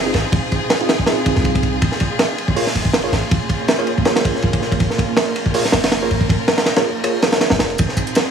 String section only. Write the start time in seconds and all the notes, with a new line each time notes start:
Already playing: C4 D#4 F4 G#4
1.82 A#3 C#4
4.81 A#4
7.79 C4 D#4 F4 G#4